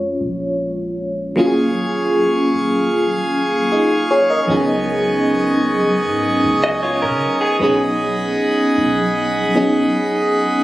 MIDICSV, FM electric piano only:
0, 0, Header, 1, 2, 480
1, 0, Start_track
1, 0, Key_signature, -6, "minor"
1, 0, Tempo, 779221
1, 845, Time_signature, 4, 2, 24, 8
1, 6552, End_track
2, 0, Start_track
2, 0, Title_t, "FM electric piano"
2, 0, Program_c, 0, 5
2, 0, Control_c, 0, 64, 127
2, 0, Note_on_c, 0, 56, 54
2, 0, Note_on_c, 0, 61, 51
2, 0, Note_on_c, 0, 65, 64
2, 0, Note_on_c, 0, 73, 91
2, 339, Note_off_c, 0, 73, 0
2, 836, Note_on_c, 0, 54, 77
2, 844, Note_on_c, 0, 58, 70
2, 850, Note_off_c, 0, 61, 0
2, 850, Note_on_c, 0, 61, 69
2, 854, Control_c, 0, 64, 0
2, 856, Note_off_c, 0, 65, 0
2, 856, Note_on_c, 0, 65, 68
2, 860, Note_off_c, 0, 56, 0
2, 862, Note_on_c, 0, 66, 69
2, 894, Note_off_c, 0, 66, 0
2, 903, Note_on_c, 0, 68, 84
2, 977, Control_c, 0, 64, 127
2, 2266, Note_off_c, 0, 65, 0
2, 2284, Note_off_c, 0, 68, 0
2, 2292, Note_on_c, 0, 68, 65
2, 2294, Note_on_c, 0, 63, 53
2, 2517, Note_off_c, 0, 68, 0
2, 2518, Note_off_c, 0, 63, 0
2, 2530, Note_on_c, 0, 73, 69
2, 2534, Note_on_c, 0, 68, 60
2, 2642, Note_off_c, 0, 73, 0
2, 2644, Note_off_c, 0, 68, 0
2, 2648, Note_on_c, 0, 75, 62
2, 2652, Note_on_c, 0, 70, 57
2, 2736, Note_off_c, 0, 54, 0
2, 2740, Note_off_c, 0, 58, 0
2, 2743, Note_off_c, 0, 61, 0
2, 2753, Note_on_c, 0, 53, 61
2, 2760, Note_on_c, 0, 59, 70
2, 2768, Note_on_c, 0, 61, 72
2, 2773, Control_c, 0, 64, 0
2, 2773, Note_on_c, 0, 63, 70
2, 2781, Note_on_c, 0, 68, 88
2, 2794, Note_on_c, 0, 54, 74
2, 2799, Note_off_c, 0, 53, 0
2, 2867, Control_c, 0, 64, 127
2, 2875, Note_off_c, 0, 75, 0
2, 2877, Note_off_c, 0, 70, 0
2, 4658, Note_off_c, 0, 59, 0
2, 4662, Note_off_c, 0, 61, 0
2, 4664, Note_off_c, 0, 63, 0
2, 4668, Note_off_c, 0, 68, 0
2, 4669, Note_off_c, 0, 54, 0
2, 4677, Note_on_c, 0, 54, 76
2, 4684, Note_on_c, 0, 59, 72
2, 4690, Note_on_c, 0, 61, 73
2, 4692, Control_c, 0, 64, 0
2, 4697, Note_on_c, 0, 63, 74
2, 4703, Note_on_c, 0, 68, 84
2, 4820, Control_c, 0, 64, 127
2, 5857, Note_off_c, 0, 54, 0
2, 5861, Note_off_c, 0, 59, 0
2, 5864, Note_off_c, 0, 61, 0
2, 5867, Note_off_c, 0, 63, 0
2, 5870, Note_off_c, 0, 68, 0
2, 5881, Note_on_c, 0, 54, 59
2, 5884, Note_on_c, 0, 59, 59
2, 5888, Note_on_c, 0, 61, 57
2, 5891, Note_on_c, 0, 63, 56
2, 5895, Note_on_c, 0, 68, 68
2, 6552, Note_off_c, 0, 54, 0
2, 6552, Note_off_c, 0, 59, 0
2, 6552, Note_off_c, 0, 61, 0
2, 6552, Note_off_c, 0, 63, 0
2, 6552, Note_off_c, 0, 68, 0
2, 6552, End_track
0, 0, End_of_file